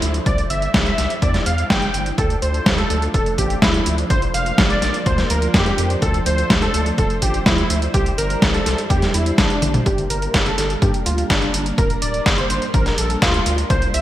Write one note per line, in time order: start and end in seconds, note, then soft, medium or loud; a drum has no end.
0.00 0.20 D2 medium
0.00 0.22 F3 medium
0.00 0.24 A3 medium
0.00 2.14 D4 medium
0.00 0.13 E4 loud
0.00 4.06 C5 medium
0.00 closed hi-hat medium
0.14 closed hi-hat soft
0.26 0.44 C2 medium
0.26 2.16 G3 medium
0.26 2.16 E4 medium
0.26 0.43 D5 loud
0.26 kick loud
0.26 closed hi-hat medium
0.38 closed hi-hat soft
0.50 0.68 G1 loud
0.50 0.76 E5 medium
0.50 closed hi-hat medium
0.62 closed hi-hat soft
0.74 0.92 C2 medium
0.74 kick loud
0.74 snare loud
0.74 closed hi-hat medium
0.86 1.12 E5 loud
0.86 closed hi-hat soft
0.98 1.07 C2 medium
0.98 snare soft
0.98 closed hi-hat medium
1.10 closed hi-hat soft
1.22 1.40 E2 medium
1.22 1.39 D5 medium
1.22 kick loud
1.22 closed hi-hat medium
1.34 snare soft
1.34 closed hi-hat soft
1.46 1.64 E2 medium
1.46 1.63 F5 medium
1.46 closed hi-hat medium
1.58 closed hi-hat soft
1.70 1.88 G1 medium
1.70 2.05 G5 loud
1.70 kick loud
1.70 snare loud
1.70 closed hi-hat medium
1.82 closed hi-hat soft
1.94 2.12 G1 medium
1.94 closed hi-hat medium
2.06 closed hi-hat soft
2.18 2.36 D2 loud
2.18 7.90 F3 medium
2.18 4.08 A3 medium
2.18 7.90 D4 medium
2.18 2.35 A4 loud
2.18 kick loud
2.18 closed hi-hat medium
2.30 closed hi-hat soft
2.42 2.60 D2 loud
2.42 2.68 C5 loud
2.42 closed hi-hat medium
2.54 closed hi-hat soft
2.66 2.84 D2 medium
2.66 kick loud
2.66 snare loud
2.66 closed hi-hat medium
2.78 3.04 A4 loud
2.78 closed hi-hat soft
2.90 3.08 D2 medium
2.90 closed hi-hat medium
3.02 closed hi-hat soft
3.14 3.23 D1 medium
3.14 3.31 A4 medium
3.14 kick loud
3.14 closed hi-hat medium
3.26 closed hi-hat soft
3.38 3.56 A1 medium
3.38 3.55 G4 medium
3.38 kick medium
3.38 closed hi-hat medium
3.50 closed hi-hat soft
3.62 3.80 D2 medium
3.62 3.97 E4 loud
3.62 kick loud
3.62 snare loud
3.62 closed hi-hat medium
3.74 closed hi-hat soft
3.86 4.04 D2 medium
3.86 closed hi-hat medium
3.98 closed hi-hat soft
4.10 4.28 A#1 medium
4.10 6.00 A#3 medium
4.10 4.27 C5 loud
4.10 9.82 C5 medium
4.10 kick loud
4.10 closed hi-hat medium
4.22 closed hi-hat soft
4.34 4.52 F1 medium
4.34 4.60 F5 loud
4.34 closed hi-hat medium
4.46 closed hi-hat soft
4.58 4.76 A#1 medium
4.58 kick loud
4.58 snare loud
4.58 closed hi-hat medium
4.70 4.96 D5 loud
4.70 closed hi-hat soft
4.82 4.91 A#1 medium
4.82 snare soft
4.82 closed hi-hat medium
4.94 closed hi-hat soft
5.06 5.24 D2 medium
5.06 5.23 C5 medium
5.06 kick loud
5.06 closed hi-hat medium
5.18 snare soft
5.18 closed hi-hat soft
5.30 5.48 D2 medium
5.30 5.48 A#4 medium
5.30 closed hi-hat medium
5.42 closed hi-hat soft
5.54 5.72 F2 medium
5.54 5.89 G4 loud
5.54 kick loud
5.54 snare loud
5.54 closed hi-hat medium
5.66 closed hi-hat soft
5.78 5.96 F2 medium
5.78 closed hi-hat medium
5.90 closed hi-hat soft
6.02 6.20 D2 loud
6.02 7.92 A3 medium
6.02 6.19 A4 loud
6.02 kick loud
6.02 closed hi-hat medium
6.14 closed hi-hat soft
6.26 6.44 D2 loud
6.26 6.52 C5 loud
6.26 closed hi-hat medium
6.38 closed hi-hat soft
6.50 6.68 D2 medium
6.50 kick loud
6.50 snare loud
6.50 closed hi-hat medium
6.62 6.88 A4 loud
6.62 closed hi-hat soft
6.74 6.92 D2 medium
6.74 closed hi-hat medium
6.86 closed hi-hat soft
6.98 7.07 D1 medium
6.98 7.15 A4 medium
6.98 kick loud
6.98 closed hi-hat medium
7.10 closed hi-hat soft
7.22 7.40 A1 medium
7.22 7.39 G4 medium
7.22 kick medium
7.22 closed hi-hat medium
7.34 closed hi-hat soft
7.46 7.64 D2 medium
7.46 7.81 E4 loud
7.46 kick loud
7.46 snare loud
7.46 closed hi-hat medium
7.58 closed hi-hat soft
7.70 7.88 D2 medium
7.70 closed hi-hat medium
7.82 closed hi-hat soft
7.94 8.12 C2 medium
7.94 9.84 G3 medium
7.94 9.84 D4 medium
7.94 9.84 E4 medium
7.94 8.11 G4 loud
7.94 kick loud
7.94 closed hi-hat medium
8.06 closed hi-hat soft
8.18 8.36 G1 medium
8.18 8.44 A#4 loud
8.18 closed hi-hat medium
8.30 closed hi-hat soft
8.42 8.60 C2 medium
8.42 kick loud
8.42 snare loud
8.42 closed hi-hat medium
8.54 8.80 A4 loud
8.54 closed hi-hat soft
8.66 8.75 C2 medium
8.66 snare soft
8.66 closed hi-hat medium
8.78 closed hi-hat soft
8.90 9.08 E2 loud
8.90 9.07 G4 medium
8.90 kick loud
8.90 closed hi-hat medium
9.02 snare soft
9.02 closed hi-hat soft
9.14 9.32 E2 medium
9.14 9.31 E4 medium
9.14 closed hi-hat loud
9.26 closed hi-hat soft
9.38 9.47 A#1 loud
9.38 9.73 D4 medium
9.38 kick loud
9.38 snare loud
9.38 closed hi-hat medium
9.50 closed hi-hat soft
9.62 9.80 A#1 medium
9.62 closed hi-hat medium
9.62 high tom medium
9.74 closed hi-hat soft
9.74 mid tom medium
9.86 10.04 G1 loud
9.86 14.02 G3 medium
9.86 13.66 A#3 medium
9.86 13.66 D4 medium
9.86 10.03 G4 loud
9.86 13.66 A#4 medium
9.86 kick loud
9.86 closed hi-hat medium
9.98 closed hi-hat soft
10.10 10.28 G1 loud
10.10 10.36 A#4 loud
10.10 closed hi-hat medium
10.22 closed hi-hat soft
10.34 10.52 G1 medium
10.34 kick loud
10.34 snare loud
10.34 closed hi-hat medium
10.46 10.72 A4 loud
10.46 closed hi-hat soft
10.58 10.76 G1 medium
10.58 snare soft
10.58 closed hi-hat medium
10.70 closed hi-hat soft
10.82 10.91 G2 medium
10.82 10.99 G4 medium
10.82 kick loud
10.82 closed hi-hat medium
10.94 closed hi-hat soft
11.06 11.24 D2 medium
11.06 11.23 F4 medium
11.06 closed hi-hat loud
11.18 closed hi-hat soft
11.30 11.48 G1 medium
11.30 11.65 D4 loud
11.30 kick loud
11.30 snare loud
11.30 closed hi-hat medium
11.42 closed hi-hat soft
11.54 11.72 G1 medium
11.54 closed hi-hat loud
11.66 closed hi-hat soft
11.78 11.96 D1 medium
11.78 11.95 A#4 loud
11.78 kick loud
11.78 closed hi-hat medium
11.90 closed hi-hat soft
12.02 12.20 D1 loud
12.02 12.28 D5 medium
12.02 closed hi-hat medium
12.14 closed hi-hat soft
12.26 12.44 G1 medium
12.26 kick loud
12.26 snare loud
12.26 closed hi-hat medium
12.38 12.64 C5 loud
12.38 closed hi-hat soft
12.50 12.59 G1 medium
12.50 closed hi-hat medium
12.62 closed hi-hat soft
12.74 12.92 A#1 medium
12.74 12.91 A#4 medium
12.74 kick loud
12.74 closed hi-hat medium
12.86 snare soft
12.86 closed hi-hat soft
12.98 13.16 A#1 medium
12.98 13.15 A4 medium
12.98 closed hi-hat medium
13.10 closed hi-hat soft
13.22 13.40 D2 medium
13.22 13.57 F4 loud
13.22 kick loud
13.22 snare loud
13.22 closed hi-hat medium
13.34 closed hi-hat soft
13.46 13.64 D2 medium
13.46 closed hi-hat medium
13.58 closed hi-hat soft
13.70 13.88 C2 loud
13.70 14.02 C4 medium
13.70 14.02 E4 medium
13.70 13.87 C5 loud
13.70 14.02 C5 medium
13.70 kick loud
13.70 closed hi-hat medium
13.82 closed hi-hat soft
13.94 14.02 C2 loud
13.94 14.02 E5 loud
13.94 closed hi-hat medium